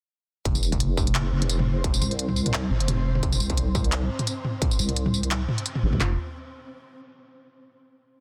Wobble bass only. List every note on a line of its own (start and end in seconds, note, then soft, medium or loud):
0.45 1.31 F1 loud
1.32 2.00 F1 loud
2.01 2.70 C2 medium
2.71 2.82 G#1 loud
2.81 3.39 F1 medium
3.40 4.09 C2 medium
4.79 5.47 C2 medium
5.83 5.92 G#1 medium
5.93 6.00 C2 medium
6.00 6.17 F1 loud